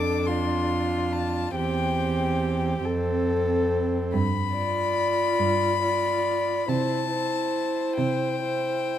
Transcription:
Already playing: F2 D4 A4 D6
0.27 F4 C6
1.12 A5
1.55 E2 C4 G4 G5
2.85 F2 C4 A4
4.14 G2 B5
4.56 F4 D5
5.39 G2
5.83 F4 D5
6.68 C3 E4 C5 A5
7.12 E4 C5
7.98 C3 G5
8.43 E4 C5

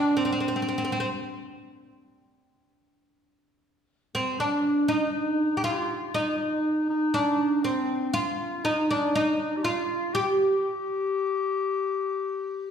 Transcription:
Already playing: D4
0.17 C4
0.25 C4
0.32 C4
0.40 C4
0.48 C4
0.56 C4
0.62 C4
0.68 C4
0.78 C4
0.85 C4
0.92 C4
1.00 C4
4.15 C4
4.39 D4
4.88 D#4
5.57 G4
5.64 F4
6.07 F4
6.14 D#4
6.90 D#4
7.14 D4
7.64 C4
8.14 F4
8.65 D#4
8.72 D4
8.79 D#4
8.91 D4
9.15 D#4
9.57 G4
9.63 F4
10.14 G4

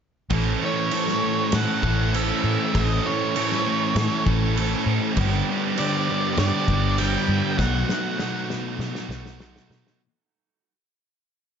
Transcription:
0.30 A1 A2 E3 A3 C#4 A4, kick, crash
0.61 E3 A3 C#5
0.91 A2 E3 A3 C#4, crash
0.96 A4
1.08 snare
1.22 E3 A3
1.51 A2 E3 A3 C#4 A4 F#5, snare, crash
1.82 A1 E3 A3 C#4 A4, kick
2.13 A2 E3 A3 C#4 A4 E5, crash
2.44 A2
2.73 A1 A2 E3 A3 C#4 A4 D#5, kick, crash
3.05 E3 A3 C#5
3.34 A2 E3 A3 C#4 A4, crash
3.38 A3
3.52 snare
3.66 E3 A3
3.95 A2 E3 A3 C#4 A4, snare, crash
4.25 A1 E3 A3 C#4 A4, kick
4.56 A2 E3 A3 C#4 A4, crash
4.86 A2
5.16 G1 G2 D3 G3 B3 D4 G4, kick, crash
5.20 G3
5.48 D3 G3
5.76 G2 D3 G3 B3 D4 D5, crash
5.80 G4
6.08 D3 G3
6.37 G2 D3 G3 B3 D4 G4 D5, snare, crash
6.67 G1 D3 G3 B3 D4 G4, kick
6.71 G3
6.98 G2 D3 G3 B3 D4 G4 G5, crash
7.28 G2
7.58 B1 B2 F#3 A3 B3 D#4 F#4 F#5, kick, snare
7.88 F#3 B3, snare
8.19 B2 F#3 A3 B3 D#4 F#4, snare
8.49 F#3 B3, snare
8.79 B2 F#3 A3 D#4 F#4, snare
8.95 snare
9.09 B1 F#3 B3 D#4 F#4, snare
9.13 A3
9.26 snare
9.39 B2 F#3 A3 D#4 F#4, snare
9.43 B3
9.56 snare
9.70 B2, snare
9.87 snare

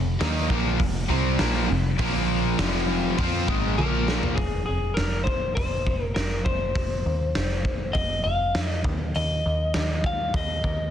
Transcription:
Already playing: F1 F2 C3
0.19 D#2 D#3 A#3 D#4, snare, open hi-hat
0.49 A#1 A#2 F3 A#3, kick
0.79 F1 F2 C3, kick, open hi-hat
1.09 C2 C3 G3 C4
1.38 A#1 A#2 F3 A#3, snare, open hi-hat
1.69 F1 F2 C3
1.99 A#1 A#2 F3 A#3, kick, open hi-hat
2.59 F1 F2 C3 F3, snare, open hi-hat
3.19 F2 F3 C4 F4, kick, open hi-hat
3.47 G#1 G#2 D#3 G#3, kick
3.77 A#1 A#2 F3 A#3 A#4, high tom
4.08 snare
4.23 floor tom
4.35 F1 G#4, kick, open hi-hat
4.66 F1 G#4
4.94 A#4, snare, open hi-hat
4.99 F1
5.24 C5, kick
5.55 F1 C5, kick, open hi-hat
5.87 F1, kick
6.14 F1 A#4, snare, open hi-hat
6.45 F1 C5, kick
6.75 F1, kick, open hi-hat
7.06 D#2
7.35 F1, snare, open hi-hat
7.65 kick
7.93 F1 D#5, kick, open hi-hat
8.24 F1 F5
8.55 F2, snare, open hi-hat
8.68 D#5
8.84 D#2, kick
9.15 D#2 D#5, open hi-hat
9.46 D#2
9.74 D#2, snare, open hi-hat
10.04 F5, kick
10.34 D#2 D#5, kick, open hi-hat
10.64 D#2, kick

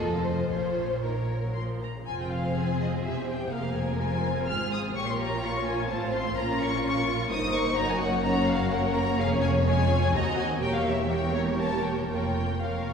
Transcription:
0.00 F1 F2 F3 F4 A4 D#5
0.24 C5
0.50 A#1 A#2 F3 F4 C5 C#5
1.02 D#3 A#4 C#5
1.29 F3
1.43 F#3
1.54 F3 C6
1.82 D#3 A#5
1.97 C#3
2.06 F1 F2 C4 F4 G#4 C5 G#5
2.21 G5
2.32 F5
2.56 F4 G#5
2.81 D#5
3.02 E1 E2 G4 C5 E5
3.29 G5
3.51 F1 F2 A#3 G#4 A#4 C5 F5
3.76 G#5
3.99 G#3 F4 G#5
4.24 C4
4.46 G#1 G#2 G#4 F6
4.72 D#6
4.95 A#1 A#2 A#3 F4 G4 C#5 C#6
5.10 C6
5.21 A#5
5.42 F4 C#6
5.67 G#5
5.89 A1 A2 C4 F4 C5 A5
6.14 C6
6.37 A#1 A#2 C#4 F4 A#4 A#5
6.62 C#6
6.85 C#4 A#4 C#6
7.09 A#3
7.30 G1 G2 D#4 A#4 C5 D#6
7.55 C#6
7.77 F#1 F#2 F#4 C#5 A#5
7.89 G#5
8.01 F#5
8.24 C#4 F#4 C#5 A#5
8.48 F5
8.72 A#3 A#4 C#5 F#5
8.96 A#5
9.19 F1 F2 C#4 G#4 F5
9.43 G#5
9.67 G#3 F4 G#4 G#5
9.90 C#4
10.14 D#2 C4 F#4 D#5 A#5
10.39 G#5
10.62 E1 E2 A#3 G4 A#4 C#5 G5
10.75 F5
10.87 E5
11.10 A#3 G4 A#4 C#5 G5
11.35 C#5
11.60 A5
11.85 G5
12.10 F1 F2 A#3 F4 A#4 C#5 G5
12.63 A#3 F4 A#4 C#5 F5

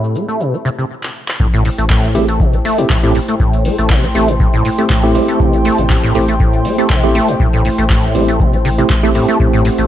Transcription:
Already playing: A2 A3 C4 E4 G4 A4 C5 E5 F#5 B5
0.04 shaker
0.15 A3, shaker
0.28 A3, shaker
0.40 B2, shaker
0.53 A3, shaker
0.65 C3, shaker
0.78 C3, shaker
1.03 clap
1.28 clap
1.40 A1 A2 A3 E4 C5 G5, kick, shaker
1.53 A2, closed hi-hat, shaker
1.65 A2, open hi-hat, shaker
1.78 A1 A3, closed hi-hat, shaker
1.90 A2, kick, clap, shaker
2.03 closed hi-hat, shaker
2.15 A1 A3 C4 E4 G4, open hi-hat, shaker
2.28 A3, closed hi-hat, shaker
2.40 B2 C6, kick, shaker
2.53 A1 A3, closed hi-hat, shaker
2.65 A3, open hi-hat, shaker
2.78 A2 A3 C4 E4 G4, closed hi-hat, shaker
2.90 A1 A2, kick, clap, shaker
3.03 A2 A3 C4 E4 G4, shaker
3.15 A2, open hi-hat, shaker
3.28 A3, closed hi-hat, shaker
3.40 A1 A2, kick, shaker
3.53 closed hi-hat, shaker
3.65 A3, open hi-hat, shaker
3.78 A1 A3, closed hi-hat, shaker
3.90 B2, kick, clap, shaker
4.03 A3, closed hi-hat, shaker
4.15 A1 A3 C4 E4 G4, open hi-hat, shaker
4.28 A2, closed hi-hat, shaker
4.40 A2, kick, shaker
4.53 A1 A2, closed hi-hat, shaker
4.65 A2, open hi-hat, shaker
4.78 A3 C4 E4 G4, closed hi-hat, shaker
4.90 A1 A2, kick, clap, shaker
5.03 A3 C4 E4 G4, shaker
5.15 A3 C4 E4 G4, open hi-hat, shaker
5.28 A3, closed hi-hat, shaker
5.40 A1 B2, kick, shaker
5.53 A3, closed hi-hat, shaker
5.65 A3, open hi-hat, shaker
5.78 A1 A2, closed hi-hat, shaker
5.90 A2, kick, clap, shaker
6.03 A2, closed hi-hat, shaker
6.15 A1 A2 A3 C4 E4 G4, open hi-hat, shaker
6.28 A3, closed hi-hat, shaker
6.40 A2, kick, shaker
6.53 A1, closed hi-hat, shaker
6.65 A3, open hi-hat, shaker
6.78 A3 C4 E4 G4, closed hi-hat, shaker
6.90 A1 B2, kick, clap, shaker
7.03 A3 C4 E4 G4, shaker
7.15 A3, open hi-hat, shaker
7.28 A2, closed hi-hat, shaker
7.40 A1 A2, kick, shaker
7.53 A2, closed hi-hat, shaker
7.65 A2, open hi-hat, shaker
7.78 A1 A3, closed hi-hat, shaker
7.90 A2, kick, clap, shaker
8.03 closed hi-hat, shaker
8.15 A1 A3 C4 E4 G4, open hi-hat, shaker
8.28 A3, closed hi-hat, shaker
8.40 B2, kick, shaker
8.53 A1 A3, closed hi-hat, shaker
8.65 C3, open hi-hat, shaker
8.78 C3 A3 C4 E4 G4, closed hi-hat, shaker
8.90 A1 A3, kick, clap, shaker
9.03 A3 C4 E4 G4, shaker
9.15 A2 A3 C4 E4 G4, open hi-hat, shaker
9.28 A3, closed hi-hat, shaker
9.40 A1 A2 F#5, kick, shaker
9.53 A2, closed hi-hat, shaker
9.65 A2, open hi-hat, shaker
9.78 A1 A3, closed hi-hat, shaker

